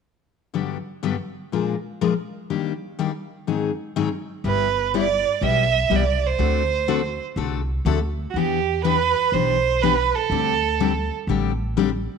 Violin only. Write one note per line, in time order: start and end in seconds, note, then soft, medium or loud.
4.47 4.91 B4 medium
4.98 5.41 D5 medium
5.45 5.97 E5 medium
5.96 6.28 D5 medium
6.27 7.23 C5 medium
8.30 8.38 F#4 medium
8.37 8.84 G4 medium
8.85 9.35 B4 medium
9.33 9.83 C5 medium
9.82 10.17 B4 medium
10.16 11.12 A4 medium